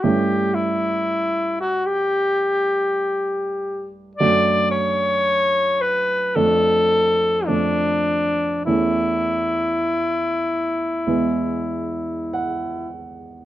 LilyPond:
<<
  \new Staff \with { instrumentName = "Alto saxophone" } { \time 4/4 \key a \major \tempo 4 = 55 g'8 e'4 fis'16 g'2 r16 | d''8 cis''4 b'8 a'4 d'4 | e'2.~ e'8 r8 | }
  \new Staff \with { instrumentName = "Grand piano" } { \time 4/4 \key a \major r1 | r1 | r2. fis''4 | }
  \new Staff \with { instrumentName = "Grand piano" } { \time 4/4 \key a \major <g, a cis' e'>1 | <fis, a d' fis'>2 <f, a d'>4 <f, a d'>4 | <e, a cis' e'>2 <e, gis b e'>2 | }
>>